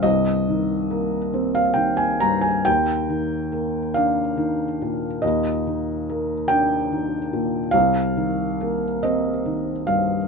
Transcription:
<<
  \new Staff \with { instrumentName = "Felt piano" } { \time 6/8 \key ees \major \tempo 4. = 47 ees''4.~ ees''16 f''16 g''16 aes''16 bes''16 aes''16 | g''4. f''4. | ees''4. g''4. | f''4. ees''4 f''8 | }
  \new Staff \with { instrumentName = "Felt piano" } { \clef bass \time 6/8 \key ees \major <c, g,>8 ees8 bes8 c'8 ees8 g,8 | ees,8 ees8 bes8 d'8 ees8 bes,8 | ees,8 ees8 bes8 d'8 ees8 bes,8 | c,8 ees8 bes8 c'8 ees8 g,8 | }
>>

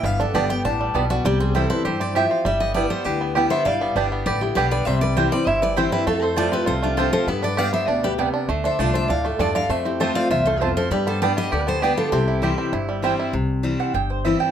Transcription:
<<
  \new Staff \with { instrumentName = "Steel-string acoustic guitar" } { \time 4/4 \key c \major \tempo 4 = 199 f''8 a'8 d''8 g''8 a''4. fis'8 | g'8 aes'8 a'8 b'8 c''8 d''8 e''8 f''8 | e''8 ees''8 d''8 c''8 b'4. e''8 | f''4 r4 d''8 g'8 b'8 d''8 |
e''8 d''8 c''8 d''8 e''8 d''8 c''8 b'8 | a'8 c''8 d''8 b'8 c''8 f'8 a'8 c''8 | b'8 d''8 f''8 e''8 d''8 b'8 r4 | r8 e''8 d''8 e''8 f''8 a'8 d''8 f''8 |
e''8 g'8 c''8 f''8 e''8 c''8 a'8 c''8 | b'8 c''8 d''8 ees''8 d''8 c''8 b'8 a'8 | g'2 r2 | r1 | }
  \new Staff \with { instrumentName = "Mandolin" } { \time 4/4 \key c \major r4 <b g' d'' a''>8 r4. <b g' d'' a''>8 r8 | r4 <c' e' c'' g''>8 r4. <c' e' c'' g''>8 r8 | r4 <b e' b' g''>8 r4. <b e' b' g''>8 r8 | r4 <b g' d'' g''>8 r4. <b g' d'' g''>8 r8 |
r4 <c' e' c'' g''>8 r4. <c' e' c'' g''>8 r8 | r4 <c' f' c'' a''>8 r4. <c' f' c'' a''>8 r8 | r4 <b g' d'' g''>8 r4. <b g' d'' g''>8 r8 | r4 <a f' d'' a''>8 r4. <a f' d'' a''>8 r8 |
r4 <c' f' c'' a''>8 r4. <c' f' c'' a''>8 r8 | r4 <b g' d'' g''>8 r4. <b g' d'' g''>8 r8 | r4 <c' e' c'' g''>8 r4. <c' e' c'' g''>8 r8 | r4. fis''8 g''8 c''8 e''8 g''8 | }
  \new Staff \with { instrumentName = "Resonator guitar played with a steel bar" } { \time 4/4 \key c \major r1 | r1 | r2 g'4. c''8 | d''4 r4 b'8 e'8 g'8 b'8 |
c''8 b'8 g'8 b'8 c''8 b'8 g'8 g'8 | f'8 a'8 a'8 g'8 a'8 d'8 f'8 a'8 | g'8 b'8 d''8 c''8 b'8 g'8 r4 | r8 c''8 a'8 c''8 d''8 f'8 a'8 d''8 |
c''8 e'8 a'8 d''8 c''8 a'8 f'8 a'8 | g'8 a'8 b'8 b'8 b'8 a'8 g'8 f'8 | e'2 r2 | r1 | }
  \new Staff \with { instrumentName = "Five-string banjo" } { \time 4/4 \key c \major b8 d'8 g'8 b8 d'8 g8 b8 d'8 | g8 c'8 e'8 c'8 g'8 c'8 g'8 c'8 | g8 b8 d'8 b8 g'8 b8 g'8 b8 | g8 b8 d'8 b8 g'8 b8 g'8 b8 |
g4 g8 c'8 e'8 e8 c'8 e'8 | a8 c'8 a8 c'8 f'8 a8 f'8 f8 | b8 d'8 g'8 b8 d'8 g8 b8 d'8 | a8 d'8 a8 d'8 d'8 a8 d'8 d8 |
a8 c'8 a8 c'8 f'8 a8 f'8 f8 | g8 b8 d'8 b8 g'8 b8 g'8 b8 | c'8 e'8 g'8 c'8 e'8 g8 c'8 e'8 | r1 | }
  \new Staff \with { instrumentName = "Steel-string acoustic guitar" } { \clef bass \time 4/4 \key c \major << { r4 <d g b g'>8 <b g'>8 r2 | r4 <e g c' e'>8 <c' e'>8 r2 | r4 <g b e'>4 r4 <g b e'>4 | r4 <g b d' g'>4 r4 <g b d' g'>4 |
r4 <e g c' e'>8 <c' e'>8 r4 <e g c' e'>4 | r4 <f a c' f'>4 r4 <f a c' f'>4 | r4 <g b d' g'>4 r2 | r4 <d a d' f'>4 r2 |
r4 <f a c' f'>4 r2 | r4 <g b d' g'>4 r4 <g b d' g'>4 | r4 <e g c' e'>4 r4 <e g c' e'>4 | r4 <e g c' e'>4 r4 <e g c' e'>4 | } \\ { g,2 a,4 b,4 | c2 e4 f4 | g2 d2 | g,2 d2 |
c2 g,2 | f,2 c2 | g,2 b,4 c4 | d2 a,4 g,4 |
f,2 e,4 f,4 | g,2 d2 | c2 g,2 | c2 g,2 | } >> }
  \new Staff \with { instrumentName = "Upright bass" } { \clef bass \time 4/4 \key c \major g,,4 g,,4 a,,4 b,,4 | c,2 g,2 | g,,2 d,2 | g,,4 g,,4 a,,4 b,,4 |
c,2 g,,2 | f,2 c,2 | g,2 d,2 | d,4 c,4 d,4 e,4 |
f,2 c,2 | g,2 d,2 | c,2 g,,2 | c,2 g,,2 | }
>>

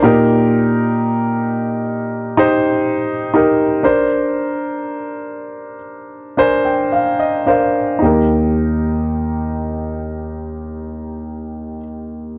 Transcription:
\new Staff \with { instrumentName = "Grand piano" } { \time 4/4 \key ees \major \tempo 4 = 58 << { bes,4. r2 r8 | r2 r8 aes''16 g''16 f''16 ees''16 f''8 | ees,1 | } \\ { <ees' g' bes'>2 r8 <ees' g' c''>4 <ees' g' bes'>8 | <d' bes' c''>2 r8 <d' bes' c''>4 <d' bes' c''>8 | <ees' g' bes'>1 | } >> }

